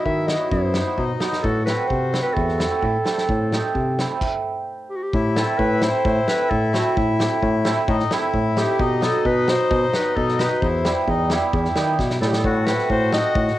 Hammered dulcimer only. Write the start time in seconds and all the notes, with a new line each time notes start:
Already playing: F#3
0.28 B3 F#4
0.40 F#3 B3 D#4
0.74 B3 D#4
0.86 F#3 B3 F#4
1.20 F#3 B3 D#4
1.67 A3 C4 E4
2.12 C4 E4
2.23 A3 C4 E4
2.58 C4 E4
2.69 A3 C4 E4
3.05 A3 C4 E4
3.52 A3 C4 D#4
3.99 C4 E4
4.10 A3 C4 E4
5.37 A3 C4 E4
5.82 A3 C4 E4
6.28 A3 C4 E4
6.73 A3 C4 E4
7.19 A3 C4 G4
7.65 A3 C4 E4
8.11 A3 C4 E4
8.56 A3 C4 D#4
9.01 F#3 B3 D#4
9.47 F#3 B3 F#4
9.93 F#3 B3 D#4
10.39 F#3 B3 D#4
10.85 G3 B3 E4
11.30 G3 B3 E4
11.76 G3 B3 D#4
12.22 G3 B3 D#4
12.68 A3 C4 E4
13.12 A3 C4 D#4